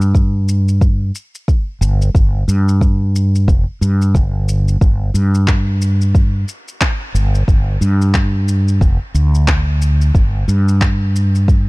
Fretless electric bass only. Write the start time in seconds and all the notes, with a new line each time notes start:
Already playing: G2
1.81 G1
2.14 G1
2.48 G2
3.48 F1
3.81 G2
4.15 G1
4.81 G1
5.14 G2
7.14 G1
7.48 G1
7.81 G2
8.81 F1
9.14 D2
10.15 G1
10.48 G2